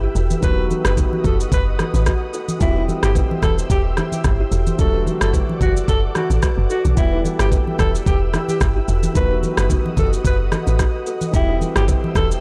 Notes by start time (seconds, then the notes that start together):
Already playing: E3 G3 B3 G4 B4 E5 G5 E6
0.03 E4 G4
0.15 E1 F#4 A4, shaker
0.30 high conga, shaker
0.40 E1 D#3 F#3 B3 B4 D#5 F#5 D#6, kick, low conga, shaker
0.45 F#4
0.58 G4 B4
0.70 F#4 A4, high conga, shaker
0.85 F#1 B4, cross-stick, shaker
0.97 F#4 B4, kick, low conga, shaker
1.13 high conga
1.24 F#1 A4, kick, high conga, low conga, shaker
1.40 shaker
1.52 F#1 B4, kick, shaker
1.79 F#4 A4, cross-stick, high conga, shaker
1.94 A1 B4, high conga, shaker
2.06 F#4 B4, kick, cross-stick, shaker
2.34 F#4 A4, shaker
2.48 high conga, shaker
2.58 E1 E3 G3 C4 E4 C5 E5 G5 E6, kick, low conga, shaker
2.63 F#4
2.70 G4
2.76 G4 B4
2.88 F#4 A4, high conga, shaker
3.03 G1 G4, cross-stick, shaker
3.15 G4 B4, kick, low conga, shaker
3.31 high conga
3.42 E1 A4, kick, cross-stick, high conga, low conga, shaker
3.59 shaker
3.70 E1 G4, kick, shaker
3.97 E4 G4, cross-stick, high conga, shaker
4.12 G4, high conga, shaker
4.24 G1, kick, cross-stick, shaker
4.40 E4 G4
4.52 E1 F#4 A4, shaker
4.67 high conga, shaker
4.77 E1 D3 F#3 A3 A4 D5 F#5 D6, kick, low conga, shaker
4.82 F#4
4.94 G4 B4
5.06 F#4 A4, high conga, shaker
5.21 F#1 A4, cross-stick, shaker
5.34 F#4 B4, kick, low conga, shaker
5.49 high conga
5.61 F#1 F#4, kick, high conga, low conga, shaker
5.77 shaker
5.88 F#1 A4, kick, shaker
6.15 F#4 A4, cross-stick, high conga, shaker
6.30 A1, high conga, shaker
6.42 F#4 B4, kick, cross-stick, shaker
6.58 F#1
6.70 F#4 A4, shaker
6.85 B1, high conga, shaker
6.95 E1 E3 G3 B3 E4 B4 E5 G5 E6, kick, low conga, shaker
7.00 G4
7.13 G4 B4
7.25 F#4 A4, high conga, shaker
7.39 G1 G4, cross-stick, shaker
7.52 G4 B4, kick, low conga, shaker
7.67 high conga
7.79 E1 A4, kick, cross-stick, high conga, low conga, shaker
7.95 shaker
8.06 E1 G4, kick, shaker
8.34 E4 G4, cross-stick, high conga, shaker
8.48 G4, high conga, shaker
8.61 G1, kick, cross-stick, shaker
8.76 E4 G4
8.88 E1 F#4 A4, shaker
9.03 high conga, shaker
9.13 E1 D#3 F#3 B3 B4 D#5 F#5 D#6, kick, low conga, shaker
9.18 F#4
9.31 G4 B4
9.43 F#4 A4, high conga, shaker
9.57 F#1 B4, cross-stick, shaker
9.70 F#4 B4, kick, low conga, shaker
9.86 high conga
9.97 F#1 A4, kick, high conga, low conga, shaker
10.13 shaker
10.25 F#1 B4, kick, shaker
10.52 F#4 A4, cross-stick, high conga, shaker
10.67 A1 B4, high conga, shaker
10.79 F#4 B4, kick, cross-stick, shaker
11.07 F#4 A4, shaker
11.21 high conga, shaker
11.31 E1 E3 G3 C4 E4 C5 E5 G5 E6, kick, low conga, shaker
11.36 G4
11.49 G4 B4
11.61 F#4 A4, high conga, shaker
11.76 G1 G4, cross-stick, shaker
11.88 G4 B4, kick, low conga, shaker
12.04 high conga
12.15 E1 A4, kick, cross-stick, high conga, low conga, shaker
12.31 shaker